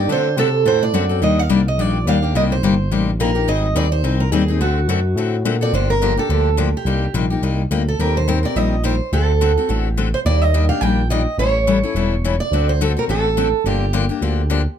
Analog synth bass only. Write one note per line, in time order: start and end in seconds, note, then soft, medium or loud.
0.09 0.36 D3 medium
0.36 0.64 C3 medium
0.65 0.93 A2 medium
0.93 1.21 F#2 medium
1.21 1.49 D#2 medium
1.49 1.77 C2 medium
1.77 2.05 A#1 medium
2.06 2.33 D#2 medium
2.34 2.61 C2 medium
2.62 2.90 G1 medium
2.91 3.18 A1 medium
3.19 3.46 A#1 medium
3.47 3.74 G#1 medium
3.75 4.03 D#2 medium
4.03 4.31 C2 medium
4.31 4.59 D#2 medium
4.59 4.87 D2 medium
4.88 5.15 F#2 medium
5.16 5.43 A2 medium
5.44 5.72 A#2 medium
5.73 6.18 G1 medium
6.29 6.74 D2 medium
6.84 7.08 C2 medium
7.13 7.38 A#1 medium
7.42 7.66 C2 medium
7.70 7.95 D2 medium
7.99 8.44 D#2 medium
8.55 9.01 A#1 medium
9.12 9.57 D2 medium
9.69 10.14 A1 medium
10.25 10.71 D#2 medium
10.81 11.27 A#1 medium
11.38 11.83 A1 medium
11.94 12.40 E1 medium
12.51 12.97 D2 medium
13.08 13.54 A1 medium
13.64 14.10 G1 medium
14.21 14.67 D2 medium